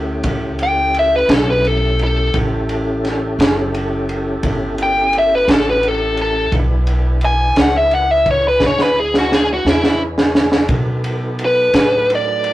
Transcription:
Already playing: D2 A3 C#4 E4 G4
0.23 C#2, kick, ride
0.59 ride
0.63 G5
0.94 ride
0.99 E5
1.16 B4
1.29 B1, snare, ride
1.34 A4
1.50 B4
1.65 A4, ride
1.99 ride
2.04 A4
2.33 A1 C#4 E4 G4 A4, kick, ride
2.69 ride
3.05 snare, ride
3.39 F#1, snare, ride
3.74 ride
4.09 ride
4.43 G1, kick, ride
4.78 ride
4.83 G5
5.13 ride
5.18 E5
5.35 B4
5.48 A1, snare, ride
5.52 A4
5.70 B4
5.83 ride
5.88 A4
6.17 ride
6.22 A4
6.52 B1 D4 E4 G#4 B4, kick, ride
6.87 ride
7.21 ride
7.25 G#5
7.56 C#2, snare, ride
7.61 F#5
7.78 E5
7.91 F#5, ride
8.11 E5
8.26 kick, ride
8.31 C#5
8.48 B4
8.60 D2, kick, snare
8.66 C#5
8.79 snare
8.83 B4
9.00 G#4
9.14 snare
9.18 F#4
9.32 G#4, snare
9.54 F#4
9.65 E2, snare
9.70 E4
9.84 snare
10.18 snare
10.35 snare
10.52 snare
10.68 B2 F#3 D#4 A4 B4, kick, ride
11.04 ride
11.39 ride
11.45 B4
11.74 A2, snare, ride
12.10 ride
12.15 D5
12.44 ride

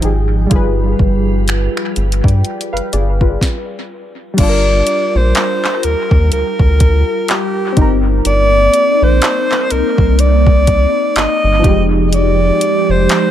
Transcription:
Already playing: F3 D#4 G5
0.01 G#1 F3 D#4 G4, closed hi-hat
0.05 G#4
0.47 G3 F4
0.51 G1 G3 F4 G#4 B4, kick, closed hi-hat
0.56 B4
0.99 G1, kick
1.48 finger snap, closed hi-hat
1.77 finger snap
1.96 G1, closed hi-hat
2.12 closed hi-hat
2.24 G2 D5 G5, kick
2.28 closed hi-hat
2.45 closed hi-hat
2.61 closed hi-hat
2.73 G1 B4 F5
2.77 closed hi-hat
2.93 G1 G#4 D5, closed hi-hat
3.21 F4 B4, kick
3.41 kick, snare
4.34 G3 D4
4.38 G1 G3 F4 A#4 D5, kick, closed hi-hat, crash
4.43 A4
4.49 A#4
4.87 closed hi-hat
5.15 A#1 C5
5.35 clap, closed hi-hat
5.65 clap
5.83 D#2 A#4, closed hi-hat
6.11 D#2, kick
6.32 D2 A#4, closed hi-hat
6.59 D2, kick
6.80 kick, closed hi-hat
7.28 G4, clap, closed hi-hat
7.72 A#3 C4 D#4
7.76 G1 C4 D#4, kick, closed hi-hat
7.82 A#4
8.25 G1 D5, closed hi-hat
8.74 closed hi-hat
9.02 A#1 C5
9.22 clap, closed hi-hat
9.52 clap
9.71 C2 A#4, closed hi-hat
9.98 C2, kick
10.19 D5, closed hi-hat
10.47 kick
10.67 kick, closed hi-hat
11.16 G1 D#5, clap, closed hi-hat
11.44 G1
11.59 F3 D#4
11.64 F1 F3 G#3 D#4 G4, kick, closed hi-hat
11.69 G#3
12.08 D#5
12.13 D5, closed hi-hat
12.61 closed hi-hat
12.89 F1 C5
13.09 clap, closed hi-hat

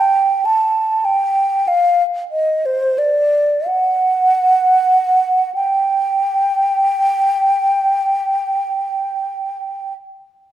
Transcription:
Already playing: G5
0.45 A5
1.05 G5
1.68 F5
2.31 D#5
2.66 C5
2.98 D5
3.68 F#5
5.55 G5

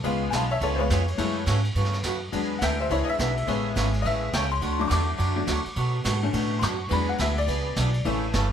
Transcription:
0.04 C#2 C#3 G#3 B3 F4 G#4, kick, ride
0.30 B1 C#3 G#3 B3 F4 G#4 F5 G#5, kick, snare, hi-hat pedal, ride
0.35 A5
0.51 C#5 E5
0.60 C#2 C#3 G#3 B3 F4 G#4 A4 C#5, kick, ride
0.76 G#3 B3 F4 C5
0.80 C#5
0.90 F2 C#3 G#3 B3 F4 G#4, kick, snare, hi-hat pedal, ride
1.08 ride
1.18 F#2 C#3 E3 G#3 A3 C#4 E4 F#4, kick, ride
1.46 G#2 C#3 E3 A3 C#4 F#4, kick, snare, hi-hat pedal, ride
1.64 ride
1.75 G2 C#3 E3 A3 C#4 F#4, kick, ride
1.85 snare
1.93 snare, ride
2.03 F#2 C#3 E3 A3 C#4 F#4, kick, snare, hi-hat pedal, ride
2.32 E2 E3 F#3 G#3 B3 D4 G#4, kick, ride
2.59 D2 E3 B3 D4 G#4 E5 F#5, kick, snare, hi-hat pedal, ride
2.63 G5
2.80 C5 E5
2.90 C#2 E3 B3 D4 E4 G#4 C#5, kick, ride
3.05 D#5
3.09 E5
3.19 B1 E3 B3 D4 G#4, kick, snare, hi-hat pedal, ride
3.37 ride
3.47 A1 C#3 E3 G#3 A3 B3 C#4 G#4, kick, ride
3.76 G#1 C#3 E3 A3 C#4 G#4, kick, snare, hi-hat pedal, ride
3.94 ride
4.02 A1 C#3 E3 A3 C#4 G#4 D#5, kick, ride
4.06 E5
4.33 C#2 C#3 E3 A3 C#4 G#4 G5, kick, snare, hi-hat pedal, ride
4.52 C6
4.61 D2 D3 F#3 A3 D4 F#4, kick, ride
4.79 F#3 A3 D4 D6
4.88 E2 D3 F#3 A3 D4 F#4 C#6, kick, snare, hi-hat pedal, ride
4.92 D6
5.18 F#2 D3 F#3 A3 D4 F#4, kick, ride
5.36 F#3 A3 D4
5.47 D2 D3 F#3 A3 D4 F#4, kick, snare, hi-hat pedal, ride
5.65 muted upright bass stroke, ride
5.76 B2 F#3 A3 D4 F#4, kick, ride
6.04 G#2 B2 F#3 A3 D4 F#4, kick, snare, hi-hat pedal, ride
6.22 D3 A3 C#4
6.33 A2 B2 F#3 A3 D4 F#4, kick, ride
6.59 F#2 B2 F#3 A3 D4 F#4 C6, kick, snare, hi-hat pedal, ride
6.63 C#6
6.89 E2 E3 F#3 G#3 B3 D4 G#4 B5, kick, ride
7.09 F#5
7.19 D2 E3 B3 D4 G#4 E5, kick, snare, hi-hat pedal, ride
7.38 D5, ride
7.47 C#2 E3 B3 D4 G#4, kick, ride
7.76 B1 E3 B3 D4 G#4, kick, snare, hi-hat pedal, ride
7.94 ride
8.05 A1 C#3 E3 A3 C#4 A4, kick, ride
8.33 G1 C#3 E3 A3 C#4 A4, kick, snare, hi-hat pedal, ride

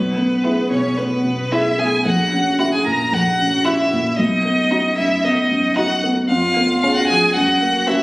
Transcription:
Already playing: B1 B3 B4
0.17 B3
0.44 E4 G#4
0.70 B2 C#4 C#5
0.98 B3 B4
1.24 B2
1.52 E4 G#4 E5
1.78 B3 G#4 G#5
2.05 A#1 F#4 F#5
2.32 C#4
2.59 E4 F#4 F#5
2.72 G#4 G#5
2.86 A#2 A#4 A#5
3.12 A#1 F#4 F#5
3.39 C#4
3.65 E4 F#4 E5
3.92 A#2
4.18 B1 D#4 D#5
4.45 B3
4.71 D#4 F#4
4.96 F#2 E4 E5
5.24 B3 D#4 D#5
5.51 F#2
5.76 D#4 F#4 F#5
6.04 B3
6.29 F2 F4 F5
6.56 B3
6.82 C#4 F4 G#4 F5
6.96 F#4 F#5
7.07 F3 G#4 G#5
7.34 F#2 F#4 F#5
7.61 A#3
7.87 A#3 C#4 E4 F#4 E5

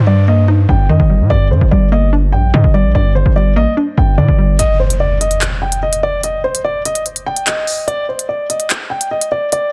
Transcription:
Already playing: G2 D#3, downlifter
0.07 G3 D5
0.28 A#3 D#5
0.48 D#4
0.69 G1 G2 G5
0.89 G2 D#3 D#5
1.00 G1
1.10 G3
1.20 A#2
1.30 G1 G2 D5
1.51 G2 D3 C5
1.61 G1
1.71 G1 G3 D5
1.92 A#3 D#5
2.13 D4
2.32 A#1 G2 G5
2.54 G2 D3 D#5
2.64 G1
2.74 G3 D5
2.85 A#1
2.95 G1 G2 D5
3.15 D3 C5
3.26 G1
3.36 G3 D5
3.56 A1 A#3 D#5
3.77 D4
3.98 G1 G2 G5
4.18 A#2 D3 D5
4.28 G1
4.38 G3
4.59 D#5, closed hi-hat, impact
4.80 C5
4.90 closed hi-hat
5.00 D5
5.21 D#5, closed hi-hat
5.31 closed hi-hat
5.41 clap, closed hi-hat
5.62 G5
5.72 closed hi-hat
5.83 D#5
5.93 closed hi-hat
6.03 D5
6.23 D#5, closed hi-hat
6.44 C5
6.55 closed hi-hat
6.64 D5
6.85 D#5, closed hi-hat
6.95 closed hi-hat
7.06 closed hi-hat
7.16 closed hi-hat
7.26 G5
7.36 closed hi-hat
7.47 D#5, clap, closed hi-hat
7.67 open hi-hat
7.88 D5, closed hi-hat
8.09 C5
8.19 closed hi-hat
8.29 D5
8.50 D#5, closed hi-hat
8.60 closed hi-hat
8.70 clap, closed hi-hat
8.90 G5
9.01 closed hi-hat
9.11 D#5
9.21 closed hi-hat
9.32 D5
9.52 D5, closed hi-hat

